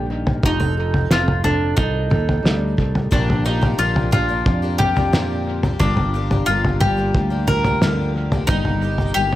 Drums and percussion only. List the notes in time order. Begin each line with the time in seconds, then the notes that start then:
0.27 floor tom
0.43 kick, floor tom
0.60 floor tom
0.94 floor tom
1.11 snare
1.28 floor tom
1.44 floor tom
1.78 kick, floor tom
2.11 floor tom, mid tom
2.29 floor tom
2.45 snare
2.78 kick
2.95 floor tom
3.12 kick, floor tom
3.30 floor tom
3.63 floor tom
3.96 floor tom
4.13 floor tom, mid tom
4.46 kick, floor tom
4.80 floor tom, mid tom
4.97 floor tom
5.13 snare, mid tom
5.63 floor tom
5.80 kick, floor tom
5.97 floor tom
6.31 floor tom
6.65 floor tom
6.81 floor tom, mid tom
7.15 kick, floor tom
7.48 floor tom, mid tom
7.64 floor tom
7.82 snare, mid tom
8.32 floor tom
8.49 kick, floor tom
8.65 floor tom
8.98 floor tom